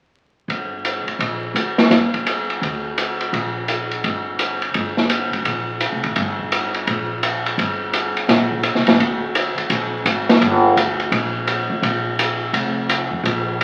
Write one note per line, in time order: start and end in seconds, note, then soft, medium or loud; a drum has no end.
0.48 1.03 G1 medium
0.48 ride soft
0.85 hi-hat pedal soft
0.85 ride soft
1.06 muted upright bass stroke soft
1.06 ride soft
1.19 1.52 A#1 medium
1.19 ride soft
1.54 1.88 D2 medium
1.54 hi-hat pedal soft
1.54 ride soft
1.78 snare soft
1.78 ride soft
1.90 2.58 G1 medium
1.90 snare soft
1.90 ride soft
2.14 kick soft
2.14 ride soft
2.27 hi-hat pedal soft
2.27 ride soft
2.50 ride soft
2.61 3.29 D2 medium
2.61 ride soft
2.98 hi-hat pedal soft
2.98 ride soft
3.21 ride soft
3.33 4.00 A#1 medium
3.33 ride soft
3.68 hi-hat pedal soft
3.68 ride soft
3.91 ride soft
4.04 4.71 G1 medium
4.04 ride soft
4.39 hi-hat pedal soft
4.39 ride soft
4.62 ride soft
4.74 5.29 G1 medium
4.74 ride soft
4.97 snare soft
5.10 hi-hat pedal soft
5.10 ride medium
5.33 5.45 F#1 medium
5.33 ride soft
5.45 5.89 A#1 medium
5.45 ride soft
5.80 hi-hat pedal soft
5.80 ride soft
5.92 6.04 C2 soft
6.04 6.15 G#1 medium
6.04 ride soft
6.16 6.84 G1 medium
6.16 ride soft
6.39 kick soft
6.52 hi-hat pedal soft
6.52 ride medium
6.74 ride soft
6.87 7.54 A#1 medium
6.87 ride soft
7.23 hi-hat pedal soft
7.23 ride medium
7.46 ride soft
7.58 8.25 G1 medium
7.58 ride soft
7.93 hi-hat pedal soft
7.93 ride medium
8.17 ride soft
8.28 8.73 A#1 medium
8.28 snare soft
8.28 ride soft
8.51 kick soft
8.63 hi-hat pedal soft
8.63 ride medium
8.75 8.87 C2 medium
8.75 snare soft
8.87 8.99 A1 medium
8.87 snare soft
8.87 ride soft
8.99 9.54 D2 medium
8.99 ride soft
9.35 hi-hat pedal medium
9.35 ride medium
9.58 muted upright bass stroke soft
9.58 ride soft
9.70 10.03 A#1 medium
9.70 ride medium
10.05 10.39 G#1 medium
10.05 hi-hat pedal medium
10.05 ride medium
10.29 snare soft
10.29 ride soft
10.41 10.74 G1 medium
10.41 ride soft
10.76 11.10 D2 medium
10.76 hi-hat pedal soft
10.76 ride medium
11.00 ride soft
11.11 11.66 A#1 medium
11.11 ride medium
11.47 hi-hat pedal medium
11.47 ride medium
11.70 11.82 F2 medium
11.82 12.50 A#1 medium
11.82 ride soft
12.19 hi-hat pedal medium
12.19 ride medium
12.53 13.08 F1 medium
12.53 ride medium
12.89 hi-hat pedal soft
12.89 ride medium
13.11 13.23 F2 medium
13.23 13.64 A#1 medium
13.23 ride soft